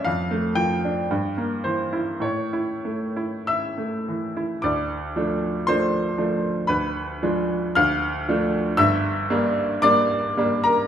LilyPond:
<<
  \new Staff \with { instrumentName = "Grand piano" } { \time 2/4 \key d \minor \tempo 4 = 56 f''8 g''4 c''8 | cis''4 <e'' e'''>4 | <d'' d'''>4 <c'' c'''>4 | <b' b''>4 <f'' f'''>4 |
<e'' e'''>4 <d'' d'''>8. <bes' bes''>16 | }
  \new Staff \with { instrumentName = "Grand piano" } { \time 2/4 \key d \minor f,16 a16 f16 d'16 g,16 bes16 e16 e'16 | a,16 e'16 a16 e'8 a16 e16 e'16 | d,8 <f a d'>8 <f a d'>8 <f a d'>8 | d,8 <f aes d'>8 d,8 <f a d'>8 |
<g,, g,>8 <g bes d'>8 <g bes d'>8 <g bes d'>8 | }
>>